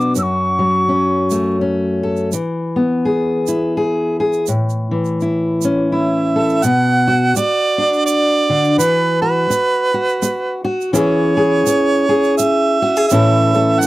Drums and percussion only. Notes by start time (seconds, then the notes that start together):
0.00 shaker
0.16 shaker
1.30 shaker
2.17 shaker
2.32 shaker
3.47 shaker
4.33 shaker
4.47 shaker
4.70 shaker
5.05 shaker
5.21 shaker
5.62 shaker
6.49 shaker
6.63 shaker
7.36 shaker
7.93 shaker
8.07 shaker
8.64 shaker
8.80 shaker
9.51 shaker
10.09 shaker
10.23 shaker
10.81 shaker
10.95 shaker
11.66 shaker
12.24 shaker
12.38 shaker
12.96 shaker
13.10 shaker
13.54 shaker
13.82 shaker